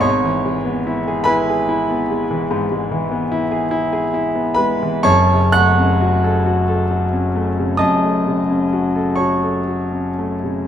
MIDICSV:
0, 0, Header, 1, 2, 480
1, 0, Start_track
1, 0, Tempo, 825309
1, 24, Time_signature, 12, 3, 24, 8
1, 1465, Tempo, 803213
1, 2425, Tempo, 946372
1, 3385, Tempo, 896861
1, 4825, Tempo, 961538
1, 5305, Tempo, 1041667
1, 5768, End_track
2, 0, Start_track
2, 0, Title_t, "Grand piano"
2, 0, Program_c, 0, 0
2, 0, Control_c, 0, 64, 127
2, 0, Note_on_c, 0, 44, 83
2, 3, Note_on_c, 0, 85, 95
2, 8, Note_on_c, 0, 73, 81
2, 14, Note_on_c, 0, 32, 82
2, 33, Control_c, 0, 64, 0
2, 134, Control_c, 0, 64, 127
2, 142, Note_on_c, 0, 52, 58
2, 263, Note_on_c, 0, 56, 67
2, 334, Note_off_c, 0, 52, 0
2, 379, Note_on_c, 0, 59, 60
2, 455, Note_off_c, 0, 56, 0
2, 504, Note_on_c, 0, 64, 69
2, 574, Note_off_c, 0, 59, 0
2, 626, Note_on_c, 0, 68, 70
2, 697, Note_off_c, 0, 64, 0
2, 712, Note_off_c, 0, 73, 0
2, 720, Note_on_c, 0, 83, 108
2, 728, Note_on_c, 0, 80, 82
2, 729, Note_on_c, 0, 71, 86
2, 733, Note_off_c, 0, 85, 0
2, 740, Note_on_c, 0, 64, 74
2, 817, Note_off_c, 0, 68, 0
2, 868, Note_on_c, 0, 68, 68
2, 934, Note_off_c, 0, 64, 0
2, 981, Note_on_c, 0, 64, 73
2, 1058, Note_off_c, 0, 68, 0
2, 1103, Note_on_c, 0, 59, 64
2, 1176, Note_off_c, 0, 64, 0
2, 1220, Note_on_c, 0, 56, 61
2, 1297, Note_off_c, 0, 59, 0
2, 1342, Note_on_c, 0, 52, 66
2, 1415, Note_off_c, 0, 56, 0
2, 1425, Note_off_c, 0, 44, 0
2, 1436, Note_off_c, 0, 32, 0
2, 1459, Note_on_c, 0, 44, 76
2, 1535, Note_off_c, 0, 52, 0
2, 1583, Note_on_c, 0, 56, 69
2, 1701, Note_on_c, 0, 52, 64
2, 1774, Note_off_c, 0, 56, 0
2, 1820, Note_on_c, 0, 59, 64
2, 1892, Note_off_c, 0, 52, 0
2, 1942, Note_on_c, 0, 64, 76
2, 2010, Note_off_c, 0, 59, 0
2, 2059, Note_on_c, 0, 68, 69
2, 2131, Note_off_c, 0, 64, 0
2, 2177, Note_on_c, 0, 64, 75
2, 2251, Note_off_c, 0, 68, 0
2, 2307, Note_on_c, 0, 68, 71
2, 2374, Note_off_c, 0, 64, 0
2, 2393, Note_off_c, 0, 80, 0
2, 2394, Note_off_c, 0, 71, 0
2, 2413, Note_off_c, 0, 83, 0
2, 2433, Note_on_c, 0, 64, 72
2, 2494, Note_off_c, 0, 68, 0
2, 2540, Note_on_c, 0, 59, 60
2, 2610, Note_off_c, 0, 64, 0
2, 2638, Note_on_c, 0, 83, 98
2, 2646, Note_on_c, 0, 71, 79
2, 2655, Note_on_c, 0, 56, 68
2, 2730, Note_off_c, 0, 59, 0
2, 2780, Note_on_c, 0, 52, 66
2, 2855, Note_off_c, 0, 56, 0
2, 2883, Note_off_c, 0, 44, 0
2, 2884, Note_off_c, 0, 71, 0
2, 2885, Note_on_c, 0, 85, 120
2, 2886, Note_on_c, 0, 42, 84
2, 2891, Note_on_c, 0, 81, 87
2, 2892, Note_on_c, 0, 73, 94
2, 2898, Note_off_c, 0, 83, 0
2, 2900, Note_on_c, 0, 30, 77
2, 2907, Note_off_c, 0, 52, 0
2, 2916, Control_c, 0, 64, 0
2, 3030, Control_c, 0, 64, 127
2, 3036, Note_on_c, 0, 49, 60
2, 3128, Note_off_c, 0, 81, 0
2, 3129, Note_off_c, 0, 73, 0
2, 3131, Note_off_c, 0, 85, 0
2, 3135, Note_on_c, 0, 90, 122
2, 3139, Note_on_c, 0, 78, 88
2, 3139, Note_on_c, 0, 85, 83
2, 3150, Note_on_c, 0, 57, 62
2, 3226, Note_off_c, 0, 49, 0
2, 3266, Note_on_c, 0, 61, 67
2, 3338, Note_off_c, 0, 57, 0
2, 3382, Note_on_c, 0, 66, 69
2, 3456, Note_off_c, 0, 61, 0
2, 3504, Note_on_c, 0, 69, 73
2, 3577, Note_off_c, 0, 66, 0
2, 3622, Note_on_c, 0, 66, 73
2, 3697, Note_off_c, 0, 69, 0
2, 3739, Note_on_c, 0, 69, 69
2, 3814, Note_off_c, 0, 66, 0
2, 3863, Note_on_c, 0, 66, 67
2, 3930, Note_off_c, 0, 69, 0
2, 3980, Note_on_c, 0, 61, 53
2, 4051, Note_off_c, 0, 66, 0
2, 4100, Note_on_c, 0, 57, 59
2, 4170, Note_off_c, 0, 61, 0
2, 4225, Note_on_c, 0, 49, 61
2, 4291, Note_off_c, 0, 57, 0
2, 4306, Note_off_c, 0, 42, 0
2, 4309, Note_off_c, 0, 78, 0
2, 4309, Note_off_c, 0, 85, 0
2, 4313, Note_off_c, 0, 30, 0
2, 4325, Note_on_c, 0, 87, 99
2, 4328, Note_off_c, 0, 90, 0
2, 4333, Note_on_c, 0, 75, 78
2, 4333, Note_on_c, 0, 81, 83
2, 4342, Note_on_c, 0, 42, 70
2, 4414, Note_off_c, 0, 49, 0
2, 4464, Note_on_c, 0, 57, 56
2, 4588, Note_on_c, 0, 49, 62
2, 4657, Note_off_c, 0, 57, 0
2, 4713, Note_on_c, 0, 61, 54
2, 4781, Note_off_c, 0, 49, 0
2, 4834, Note_on_c, 0, 66, 63
2, 4901, Note_off_c, 0, 61, 0
2, 4949, Note_on_c, 0, 69, 61
2, 5018, Note_off_c, 0, 66, 0
2, 5039, Note_off_c, 0, 75, 0
2, 5039, Note_off_c, 0, 81, 0
2, 5048, Note_on_c, 0, 85, 85
2, 5053, Note_on_c, 0, 81, 58
2, 5055, Note_off_c, 0, 87, 0
2, 5056, Note_on_c, 0, 73, 60
2, 5067, Note_on_c, 0, 66, 61
2, 5137, Note_off_c, 0, 69, 0
2, 5184, Note_on_c, 0, 69, 58
2, 5259, Note_off_c, 0, 66, 0
2, 5307, Note_on_c, 0, 66, 59
2, 5376, Note_off_c, 0, 69, 0
2, 5422, Note_on_c, 0, 61, 49
2, 5494, Note_off_c, 0, 66, 0
2, 5543, Note_on_c, 0, 57, 55
2, 5613, Note_off_c, 0, 61, 0
2, 5658, Note_on_c, 0, 49, 52
2, 5738, Note_off_c, 0, 57, 0
2, 5761, Note_off_c, 0, 81, 0
2, 5766, Note_off_c, 0, 73, 0
2, 5768, Note_off_c, 0, 42, 0
2, 5768, Note_off_c, 0, 49, 0
2, 5768, Note_off_c, 0, 85, 0
2, 5768, End_track
0, 0, End_of_file